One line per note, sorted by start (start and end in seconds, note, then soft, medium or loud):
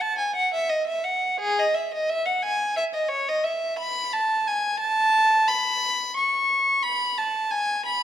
0.01 0.19 A5 loud
0.18 0.35 G#5 medium
0.35 0.53 F#5 medium
0.54 0.70 E5 medium
0.69 0.87 D#5 medium
0.87 1.05 E5 medium
1.04 1.40 F#5 medium
1.40 1.58 G#4 loud
1.59 1.77 D#5 loud
1.74 1.93 E5 medium
1.94 2.10 D#5 medium
2.10 2.27 E5 loud
2.26 2.44 F#5 medium
2.42 2.77 G#5 loud
2.77 2.84 E5 loud
2.94 3.12 D#5 medium
3.09 3.28 C#5 loud
3.28 3.46 D#5 loud
3.44 3.79 E5 medium
3.79 4.12 B5 loud
4.13 4.47 A5 loud
4.47 4.81 G#5 medium
4.79 5.46 A5 loud
5.47 6.15 B5 loud
6.17 6.83 C#6 loud
6.83 7.17 B5 loud
7.18 7.51 A5 medium
7.51 7.85 G#5 loud
7.85 8.03 B5 loud